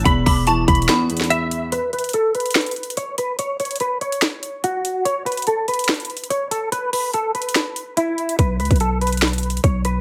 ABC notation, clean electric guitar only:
X:1
M:4/4
L:1/8
Q:1/4=144
K:Edor
V:1 name="Clean electric guitar"
b b a b3 e2 | B B A B3 c B | c c B c3 F2 | c B A B3 c A |
B B A B3 E2 | B B A B3 c B |]